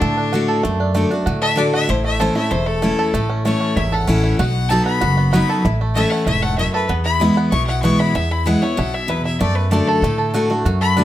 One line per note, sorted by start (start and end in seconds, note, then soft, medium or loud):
0.00 0.61 A2 medium
0.00 0.40 D3 medium
0.00 0.63 A3 medium
0.00 0.77 D4 loud
0.00 0.30 F#4 medium
0.00 0.48 A4 medium
0.17 0.61 D4 medium
0.33 0.63 D3 medium
0.33 0.63 A3 loud
0.33 0.63 D4 medium
0.33 0.77 F#4 medium
0.33 0.64 F#4 loud
0.48 1.41 A4 medium
0.63 1.03 F#2 medium
0.63 1.24 F#2 loud
0.63 0.94 A3 medium
0.80 1.09 D4 medium
0.94 1.10 D3 medium
0.94 2.04 A3 medium
0.94 1.10 A3 medium
0.94 1.11 D4 loud
0.94 1.10 F#4 medium
1.11 1.55 D4 medium
1.11 1.27 D4 soft
1.11 1.26 F#4 medium
1.26 1.86 A2 medium
1.26 1.65 D3 medium
1.26 1.70 F#4 medium
1.42 2.19 A4 medium
1.42 1.60 E5 loud
1.56 1.87 D3 medium
1.56 1.87 A3 medium
1.56 1.89 D4 medium
1.56 1.88 D4 loud
1.56 1.88 F#4 loud
1.56 1.73 D5 loud
1.74 1.89 F#4 medium
1.74 1.91 E5 loud
1.89 2.28 A1 medium
1.89 2.49 A2 loud
1.89 2.51 E4 medium
1.89 2.04 C5 medium
2.04 2.35 A3 medium
2.04 2.22 E5 loud
2.20 2.35 E3 medium
2.20 2.36 A3 medium
2.20 2.36 C#4 medium
2.20 2.34 E4 loud
2.20 2.64 A4 medium
2.20 2.35 C5 medium
2.35 2.65 A3 medium
2.35 2.51 C#4 medium
2.35 2.51 E4 medium
2.35 2.52 E5 loud
2.51 2.90 E1 medium
2.51 3.11 E2 medium
2.51 2.81 E4 medium
2.51 2.68 C5 medium
2.66 3.10 A3 medium
2.66 3.28 A4 loud
2.82 3.12 E3 medium
2.82 3.13 A3 medium
2.82 3.13 C#4 medium
2.82 3.27 E4 medium
2.82 3.13 E4 medium
2.99 3.42 A4 medium
3.14 3.53 A1 medium
3.14 3.74 A2 loud
3.14 3.44 A3 medium
3.29 3.59 C#4 medium
3.45 3.75 E3 medium
3.45 3.89 A3 medium
3.45 3.75 A3 medium
3.45 3.76 C#4 medium
3.45 3.76 E4 loud
3.45 3.78 C#5 loud
3.61 4.05 C#4 medium
3.76 4.03 G#1 medium
3.76 4.36 E2 medium
3.76 4.21 E4 medium
3.76 3.95 E5 medium
3.92 4.36 A4 medium
3.92 4.38 F#5 medium
4.07 4.34 A1 medium
4.07 4.38 E3 medium
4.07 4.38 A3 medium
4.07 4.39 C#4 medium
4.07 4.38 C#4 loud
4.07 4.38 E4 loud
4.24 4.39 E4 medium
4.39 4.78 B1 loud
4.39 4.99 B2 loud
4.39 4.83 F#4 medium
4.39 4.71 F#5 medium
4.69 5.00 F#3 medium
4.69 5.00 B3 medium
4.69 5.01 D#4 loud
4.69 5.01 F#4 loud
4.69 5.15 A4 medium
4.69 4.85 A5 loud
4.85 5.16 B3 medium
4.85 5.31 B5 loud
5.01 5.41 F#1 loud
5.01 5.61 F#2 loud
5.01 5.31 F#4 medium
5.17 5.61 B3 medium
5.33 5.63 F#3 medium
5.33 5.63 B3 loud
5.33 5.64 D#4 loud
5.33 5.64 F#4 medium
5.33 5.64 F#4 loud
5.33 5.64 B5 loud
5.49 5.65 A4 medium
5.65 6.04 A1 loud
5.65 6.25 A2 medium
5.65 6.09 E4 medium
5.81 6.10 A3 medium
5.94 6.25 E3 medium
5.94 6.26 A3 loud
5.94 6.26 C#4 loud
5.94 6.27 E4 loud
5.94 6.40 A4 medium
5.94 6.12 E5 loud
6.10 6.41 A3 medium
6.10 6.26 F#5 medium
6.26 6.66 E1 loud
6.26 6.57 G#2 medium
6.26 6.57 E4 medium
6.26 6.44 E5 loud
6.42 6.86 A3 medium
6.42 6.57 F#5 loud
6.58 6.89 F#2 medium
6.58 6.90 E4 medium
6.58 6.73 E5 loud
6.74 6.90 A4 medium
6.74 6.89 B4 loud
6.89 7.49 E2 medium
6.89 7.28 E2 medium
6.89 7.37 B3 medium
7.04 7.20 E4 medium
7.04 7.35 B5 loud
7.20 7.50 E3 medium
7.20 7.51 G#3 medium
7.20 7.51 B3 medium
7.20 7.51 E4 medium
7.20 7.51 E4 loud
7.37 7.81 B3 medium
7.51 7.91 B1 medium
7.51 8.12 B2 medium
7.51 7.67 E4 medium
7.51 7.67 C#6 loud
7.67 7.99 E4 medium
7.67 7.82 F#5 loud
7.83 8.13 E3 medium
7.83 8.14 G#3 medium
7.83 8.28 B3 medium
7.83 8.14 B3 medium
7.83 8.14 E4 loud
7.83 8.01 C#6 loud
7.99 8.14 E4 medium
7.99 8.17 B5 medium
8.15 8.54 E2 loud
8.15 8.75 E2 loud
8.15 8.30 E4 medium
8.15 8.33 E5 loud
8.31 8.46 E4 medium
8.31 8.48 B5 medium
8.46 8.61 E3 medium
8.46 8.62 G#3 loud
8.46 8.62 B3 loud
8.46 8.62 E4 medium
8.46 8.61 E4 medium
8.46 8.64 F#5 medium
8.62 8.78 B3 medium
8.62 8.77 E4 medium
8.62 8.79 C#5 medium
8.77 9.17 B1 medium
8.77 9.37 B2 medium
8.77 8.93 E4 medium
8.77 8.95 F#5 loud
8.94 9.08 E4 medium
8.94 9.10 E5 loud
9.08 9.38 E2 loud
9.08 9.24 E4 medium
9.08 9.24 B4 medium
9.25 9.41 E4 medium
9.25 9.40 E5 loud
9.41 10.00 F#2 medium
9.41 9.80 F#2 loud
9.41 9.72 A3 medium
9.41 9.57 D5 medium
9.55 9.71 B4 loud
9.71 10.01 D3 medium
9.71 10.01 A3 medium
9.71 10.03 A3 medium
9.71 10.02 D4 medium
9.71 10.02 F#4 medium
9.71 9.89 D5 medium
9.88 10.30 A4 loud
9.88 10.18 A4 medium
10.02 10.63 A2 medium
10.02 10.41 D3 medium
10.02 10.50 A3 medium
10.18 10.81 A4 medium
10.34 10.49 D3 medium
10.34 10.50 A3 medium
10.34 10.50 D4 medium
10.34 10.64 F#4 medium
10.34 10.48 F#4 loud
10.50 11.04 A3 medium
10.50 10.66 D4 soft
10.50 10.65 F#4 medium
10.65 11.04 F#2 medium
10.65 11.04 F#4 medium
10.81 11.04 A4 medium
10.81 11.04 B5 loud
10.97 11.04 D3 medium
10.97 11.04 A3 medium
10.97 11.04 D4 medium
10.97 11.04 D4 loud
10.97 11.04 F#4 loud